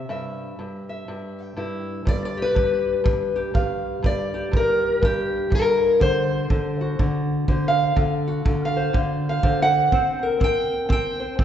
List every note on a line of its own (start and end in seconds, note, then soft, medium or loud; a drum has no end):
0.09 0.58 G2 medium
0.09 0.88 E5 medium
0.59 1.07 G2 medium
0.89 1.42 E5 soft
1.08 1.55 G2 medium
1.42 2.07 G5 loud
1.56 2.04 G2 medium
1.56 2.07 E4 medium
2.05 2.54 G2 medium
2.05 2.24 D5 loud
2.05 kick medium
2.25 2.41 D5 loud
2.37 3.35 G4 soft
2.42 3.40 B4 loud
2.55 3.04 G2 medium
2.55 kick medium
3.04 3.53 G2 medium
3.04 kick medium
3.36 4.02 G4 medium
3.54 4.01 G2 medium
3.54 4.02 F5 medium
3.54 kick medium
4.02 4.50 G2 medium
4.02 4.54 D5 loud
4.02 kick medium
4.34 5.02 G4 soft
4.51 5.00 G2 medium
4.51 kick medium
4.57 5.04 A#4 loud
5.02 5.49 G2 medium
5.02 5.53 G4 loud
5.02 kick medium
5.50 6.00 G2 medium
5.50 kick medium
5.55 6.02 A#4 medium
6.00 6.49 D3 medium
6.00 6.99 C5 loud
6.00 kick medium
6.50 6.99 D3 medium
6.50 kick medium
6.81 7.95 F#4 soft
6.99 7.47 D3 medium
6.99 kick medium
7.48 7.95 D3 medium
7.48 7.99 C5 medium
7.48 kick medium
7.68 7.98 F5 loud
7.96 8.44 D3 medium
7.96 kick medium
8.28 9.90 F#4 soft
8.45 8.92 D3 medium
8.45 kick medium
8.65 8.96 F5 loud
8.77 9.43 C5 soft
8.93 9.42 D3 medium
8.93 kick medium
9.29 9.61 F5 loud
9.43 9.92 D3 medium
9.43 9.90 C5 medium
9.43 kick medium
9.62 10.10 F#5 loud
9.92 10.39 C4 medium
9.92 11.19 C5 medium
9.92 kick medium
10.23 11.44 A#4 medium
10.40 10.87 C4 medium
10.40 10.91 G5 loud
10.40 kick medium
10.89 11.37 C4 medium
10.89 11.44 G5 loud
10.89 kick medium
11.20 11.38 C5 soft
11.39 11.44 C4 medium
11.39 11.44 C5 soft
11.39 kick medium